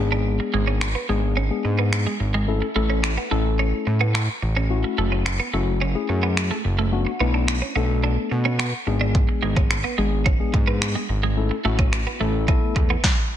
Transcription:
Already playing: tine electric piano G#3 B3
0.00 analog synth bass G#1, tine electric piano D4 G#4
0.12 clean electric guitar D4
0.40 muted clean electric guitar stroke
0.54 analog synth bass G#1, clean electric guitar G#3
0.68 clean electric guitar C#4
0.81 finger snap, muted clean electric guitar stroke
0.95 clean electric guitar B3
1.09 analog synth bass G#1, tine electric piano G#3 B3 D4 G#4, clean electric guitar G#3
1.37 clean electric guitar C#4
1.50 tine electric piano G#3 B3 D4 G#4
1.65 analog synth bass G#2, muted clean electric guitar stroke
1.79 clean electric guitar B3
1.93 finger snap
2.07 clean electric guitar G#3
2.20 analog synth bass G#1, muted clean electric guitar stroke
2.34 clean electric guitar G#3
2.48 tine electric piano A3 C#4 E4 A4
2.62 muted clean electric guitar stroke
2.75 analog synth bass A1, tine electric piano A3 C#4 E4 A4, clean electric guitar A3
2.90 clean electric guitar C#4
3.03 finger snap, muted clean electric guitar stroke
3.18 clean electric guitar B3
3.31 analog synth bass A1, tine electric piano A3 C#4 E4 A4, clean electric guitar A3
3.59 clean electric guitar C#4
3.87 analog synth bass A2, muted clean electric guitar stroke
4.01 clean electric guitar B3
4.15 clean electric guitar A3, finger snap
4.42 analog synth bass A1, muted clean electric guitar stroke
4.57 clean electric guitar C#4
4.70 tine electric piano A3 C#4 E4 F#4
4.84 muted clean electric guitar stroke
4.98 analog synth bass F#1, clean electric guitar A3
5.12 clean electric guitar C#4
5.26 finger snap, muted clean electric guitar stroke
5.40 clean electric guitar B3
5.53 analog synth bass F#1, tine electric piano A3 C#4 E4 F#4, clean electric guitar A3
5.82 clean electric guitar C#4
5.95 tine electric piano A3 C#4 E4 G#4
6.09 analog synth bass F#2, muted clean electric guitar stroke
6.23 clean electric guitar B3
6.37 finger snap
6.51 clean electric guitar A3
6.65 analog synth bass F#1, muted clean electric guitar stroke
6.79 clean electric guitar A3
6.92 tine electric piano A3 B3 D4 F#4
7.07 muted clean electric guitar stroke
7.20 analog synth bass B1, tine electric piano A3 B3 D4 E4, clean electric guitar B3
7.34 clean electric guitar D4
7.48 finger snap, muted clean electric guitar stroke
7.62 clean electric guitar C#4
7.76 analog synth bass B1, tine electric piano A3 B3 D4 A4, clean electric guitar B3
8.04 clean electric guitar D4
8.32 analog synth bass B2, muted clean electric guitar stroke
8.45 clean electric guitar C#4
8.59 clean electric guitar B3, finger snap
8.87 analog synth bass G#1, tine electric piano G#3 B3 D4 G#4, muted clean electric guitar stroke
9.01 clean electric guitar D4
9.15 kick
9.29 muted clean electric guitar stroke
9.43 analog synth bass G#1, clean electric guitar G#3
9.56 clean electric guitar C#4, kick
9.71 finger snap, muted clean electric guitar stroke
9.84 clean electric guitar B3
9.98 analog synth bass G#1, tine electric piano G#3 B3 D4 G#4, clean electric guitar G#3
10.26 clean electric guitar C#4, kick
10.39 tine electric piano G#3 B3 D4 G#4
10.54 analog synth bass G#2, muted clean electric guitar stroke, kick
10.68 clean electric guitar B3
10.82 finger snap
10.95 clean electric guitar G#3
11.09 analog synth bass G#1, muted clean electric guitar stroke
11.23 clean electric guitar G#3
11.37 tine electric piano A3 C#4 E4 A4
11.51 muted clean electric guitar stroke
11.65 analog synth bass A1, tine electric piano A3 C#4 E4 F#4, clean electric guitar A3
11.79 clean electric guitar C#4, kick
11.93 finger snap, muted clean electric guitar stroke
12.07 clean electric guitar B3
12.20 analog synth bass A1, tine electric piano A3 C#4 E4 A4, clean electric guitar A3
12.48 tine electric piano A3 B3 E4 A4, clean electric guitar C#4, kick
12.76 analog synth bass E2, muted clean electric guitar stroke, kick
12.90 clean electric guitar B3
13.04 kick, snare

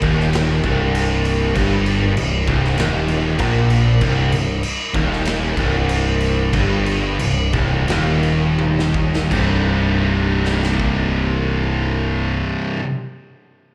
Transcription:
0.02 picked electric bass D#1, distorted electric guitar D#2, kick, crash
0.20 snare
0.33 snare, crash
0.64 picked electric bass C1, distorted electric guitar C2, kick, crash
0.95 crash
1.25 crash
1.56 picked electric bass G1, distorted electric guitar G2, kick, crash
1.86 crash
2.16 picked electric bass C1, distorted electric guitar C2, crash
2.47 picked electric bass C1, distorted electric guitar C2, kick, crash
2.64 snare
2.78 picked electric bass D#1, distorted electric guitar D#2, snare, crash
3.08 crash
3.39 picked electric bass A#1, distorted electric guitar A#2, kick, crash
3.70 crash
4.01 picked electric bass C1, distorted electric guitar C2, kick, crash
4.32 picked electric bass C1, distorted electric guitar C2, crash
4.63 crash
4.94 picked electric bass D#1, distorted electric guitar D#2, kick, crash
5.13 snare
5.25 snare, crash
5.57 picked electric bass C1, distorted electric guitar C2, kick, crash
5.89 crash
6.21 crash
6.53 picked electric bass G1, distorted electric guitar G2, kick, crash
6.86 crash
7.19 picked electric bass C1, distorted electric guitar C2, crash
7.53 picked electric bass C1, distorted electric guitar C2, kick, crash
7.88 picked electric bass D#1, distorted electric guitar D#2, snare, crash
8.23 crash
8.59 high tom
8.79 snare
8.94 kick
9.15 snare
9.29 picked electric bass C1, distorted electric guitar C2 G2 C3 G3 D#4, kick, crash
10.45 snare
10.63 snare
10.80 kick

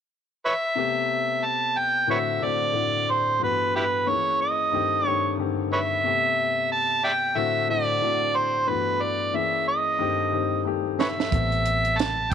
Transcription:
0.45 harmonica B4 C#5 E5
0.75 grand piano C3 A3 B3 G4
1.45 harmonica A5
1.78 harmonica G5
2.07 grand piano A2 D3 A3 C4 F#4, harmonica B4 C#5 E5
2.40 grand piano A2 D3 A3 C4 F#4, harmonica D5
2.73 grand piano A2 D3 A3 C4 F#4
3.10 harmonica C5
3.40 grand piano G2 E3 A3 B3 F#4, harmonica B4
3.76 harmonica E4 G4 B4
4.06 grand piano D#3 A#3 C#4 G#4, harmonica C#5
4.12 grand piano E3
4.41 harmonica D#5
4.72 grand piano G2 D#3 A3 C4 G4
5.04 grand piano G2 D#3 A3 C4 G4, harmonica C#5
5.37 grand piano G2 D3 A3 C4 G4
5.44 grand piano D#3
5.73 harmonica B4 C#5 E5
6.03 grand piano C3 A3 B3 G4
6.71 harmonica A5
7.04 harmonica D5 E5 G5
7.35 grand piano A2 D3 A3 C4 F#4, harmonica E5
7.69 grand piano A2 D3 A3 C4 F#4, harmonica D5
8.01 grand piano A2 D3 A3 C4 F#4
8.36 harmonica C5
8.67 grand piano G2 E3 A3 B3 F#4, harmonica B4
9.02 harmonica D5
9.33 grand piano E3 A#3 C#4 G#4, harmonica E5
9.68 harmonica D#5
9.99 grand piano G2 D#3 A3 C4 G4
10.31 grand piano G2 D#3 A3 C4 G4
10.65 grand piano G2 D#3 A3 C4 G4
11.00 harmonica B4 C#5 E5, snare
11.20 snare
11.31 fingered electric bass A1, grand piano G3 B3 C4 A4, kick, closed hi-hat
11.52 closed hi-hat
11.66 closed hi-hat
11.85 closed hi-hat
11.98 harmonica A5, snare, closed hi-hat

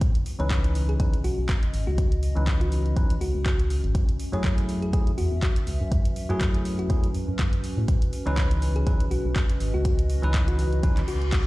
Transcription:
Already playing: ambient pad F#4 B4
0.01 ambient pad C#4, kick, closed hi-hat
0.15 closed hi-hat
0.26 open hi-hat
0.39 fm bass C#2, tine electric piano E3 C#4 D#4 B4, synth pluck C#5, closed hi-hat
0.51 kick, clap, closed hi-hat
0.64 closed hi-hat
0.69 ambient pad D#5
0.75 open hi-hat
0.89 synth pluck G#4, closed hi-hat
0.99 tine electric piano E3 C#4 D#4 B4, synth pluck G#4, kick, closed hi-hat
1.14 closed hi-hat
1.24 fm bass B1, synth pluck F#4, open hi-hat
1.38 fm bass B1
1.49 kick, clap, closed hi-hat
1.63 closed hi-hat
1.74 fm bass G#1, open hi-hat
1.87 fm bass C#2, synth pluck F#4
1.98 kick, closed hi-hat
2.12 closed hi-hat
2.23 open hi-hat
2.36 fm bass C#2, tine electric piano E3 C#4 D#4 B4, closed hi-hat
2.47 kick, clap, closed hi-hat
2.61 synth pluck F#4, closed hi-hat
2.72 open hi-hat
2.86 closed hi-hat
2.96 fm bass B1, tine electric piano E3 C#4 D#4 B4, kick, closed hi-hat
3.10 closed hi-hat
3.21 fm bass C#2, synth pluck F#4, open hi-hat
3.35 fm bass C#2
3.46 synth pluck F#4, kick, clap, closed hi-hat
3.60 closed hi-hat
3.70 open hi-hat
3.84 fm bass G#1, closed hi-hat
3.95 kick, closed hi-hat
4.09 closed hi-hat
4.20 open hi-hat
4.32 fm bass F#2, tine electric piano F#3 A3 E4 G#4, synth pluck C#5, closed hi-hat
4.44 ambient pad F#4, kick, clap, closed hi-hat
4.58 closed hi-hat
4.63 ambient pad B4 E5
4.69 open hi-hat
4.82 synth pluck G#4, closed hi-hat
4.93 tine electric piano F#3 A3 E4 G#4, synth pluck G#4, kick, closed hi-hat
5.07 closed hi-hat
5.18 fm bass E2, synth pluck F#4, open hi-hat
5.32 fm bass E2
5.42 synth pluck F#4, kick, clap, closed hi-hat
5.56 closed hi-hat
5.67 fm bass C#2, open hi-hat
5.81 fm bass F#2
5.92 kick, closed hi-hat
6.05 closed hi-hat
6.16 open hi-hat
6.29 fm bass F#2, tine electric piano F#3 A3 E4 G#4, synth pluck F#4, closed hi-hat
6.41 kick, clap, closed hi-hat
6.54 closed hi-hat
6.65 open hi-hat
6.79 synth pluck F#4, closed hi-hat
6.89 fm bass E2, tine electric piano F#3 A3 E4 G#4, kick, closed hi-hat
7.04 closed hi-hat
7.14 fm bass F#2, open hi-hat
7.28 fm bass F#2
7.39 kick, clap, closed hi-hat
7.53 closed hi-hat
7.64 open hi-hat
7.77 fm bass A2
7.88 kick, closed hi-hat
8.02 closed hi-hat
8.13 open hi-hat
8.26 fm bass C#2, tine electric piano E3 C#4 D#4 B4, synth pluck C#5, closed hi-hat
8.37 kick, clap, closed hi-hat
8.51 closed hi-hat
8.62 open hi-hat
8.76 synth pluck G#4, closed hi-hat
8.86 tine electric piano E3 C#4 D#4 B4, synth pluck G#4, kick, closed hi-hat
9.00 closed hi-hat
9.05 ambient pad D#5
9.11 fm bass B1, synth pluck F#4, open hi-hat
9.25 fm bass B1
9.36 kick, clap, closed hi-hat
9.50 closed hi-hat
9.60 fm bass G#1, open hi-hat
9.74 fm bass C#2, synth pluck F#4
9.85 kick, closed hi-hat
9.99 closed hi-hat
10.10 open hi-hat
10.22 fm bass C#2, tine electric piano E3 C#4 D#4 B4, closed hi-hat
10.34 kick, clap, closed hi-hat
10.48 synth pluck F#4, closed hi-hat
10.59 open hi-hat
10.73 closed hi-hat
10.83 fm bass B1, tine electric piano E3 C#4 D#4 B4, kick, closed hi-hat, reverse cymbal
10.97 clap, closed hi-hat
11.08 fm bass C#2, synth pluck F#4, open hi-hat
11.22 closed hi-hat
11.32 synth pluck F#4, kick, clap, closed hi-hat

